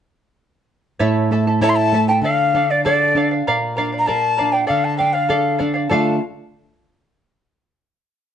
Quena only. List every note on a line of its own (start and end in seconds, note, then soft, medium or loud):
1.62 1.71 A5 medium
1.69 1.77 C6 medium
1.76 2.08 A5 loud
2.08 2.22 G5 medium
2.23 2.72 F5 medium
2.71 2.84 D5 medium
2.85 3.27 D5 medium
3.99 4.08 A#5 medium
4.07 4.54 A5 loud
4.52 4.68 G5 medium
4.68 4.86 F5 medium
4.85 4.97 A5 medium
4.98 5.15 G5 medium
5.13 5.59 F5 medium
5.89 6.17 A5 medium